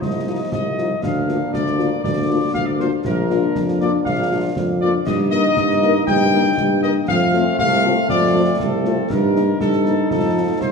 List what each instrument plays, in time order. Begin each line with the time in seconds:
Already playing: trombone section F3 D#4
0.01 tuba C2, trumpet section D#5, concert bass drum, snare
0.27 french horn section F3 D#4 F4
0.52 tuba C2, trumpet section D#5, concert bass drum, snare
0.77 french horn section F3 D#4 F4, snare
1.01 tuba D2, trombone section A#3 D4, trumpet section F5, concert bass drum, snare, crash
1.27 french horn section A#3 D4 F4, snare
1.53 tuba D2, trumpet section D5, concert bass drum, snare
1.66 snare
1.78 french horn section A#3 D4 F4, snare
2.03 tuba D2, trumpet section D5, concert bass drum, snare
2.29 french horn section A#3 D4 F4
2.54 tuba D2, trumpet section F5, concert bass drum, snare
2.66 trumpet section D5
2.79 french horn section A#3 D4 F4, trumpet section C5, snare
3.04 tuba A#1, trombone section A#3 D4, trumpet section A#4, concert bass drum, snare
3.29 french horn section A#3 D4 F4, snare
3.55 tuba F2, concert bass drum, snare
3.68 snare
3.80 french horn section A#3 D4 F4, trumpet section D5, snare
4.05 tuba A#1, trumpet section F5, concert bass drum, snare
4.31 french horn section A#3 D4 F4
4.56 tuba F2, concert bass drum, snare
4.81 french horn section A#3 D4 F4, trumpet section D5
5.05 tuba G2, trombone section A#3 D#4, trumpet section D#5, concert bass drum, snare, crash
5.31 french horn section A#3 D#4 A#4, trumpet section D#5, snare
5.57 tuba G2, concert bass drum, snare
5.70 snare
5.82 french horn section A#3 D#4 A#4, snare
6.07 tuba G2, trumpet section G5, concert bass drum, snare
6.32 french horn section A#3 D#4 A#4
6.57 tuba G2, concert bass drum, snare
6.83 french horn section A#3 D#4 A#4, trumpet section D#5, snare
7.08 tuba F2, trombone section A3 C4, trumpet section F5, concert bass drum, snare
7.33 french horn section A3 C4 F4, snare
7.59 tuba C2, trumpet section F5, concert bass drum, snare
7.72 snare
7.84 french horn section A3 C4 F4, snare
8.09 tuba F2, trumpet section D5, concert bass drum, snare
8.34 french horn section A3 C4 F4
8.60 tuba C2, trumpet section A4, concert bass drum, snare
8.85 french horn section A3 C4 F4, snare
9.09 tuba G2, trombone section G3 D#4, trumpet section A#4, concert bass drum, snare, crash
9.35 french horn section A#3 D#4, snare
9.60 tuba G2, trumpet section A4, concert bass drum, snare
9.73 snare
9.86 french horn section A#3 D#4, snare
10.10 tuba F2, trombone section F3, trumpet section A4, concert bass drum, snare
10.36 french horn section C4 D#4 F4
10.61 tuba C2, trumpet section C5, concert bass drum, snare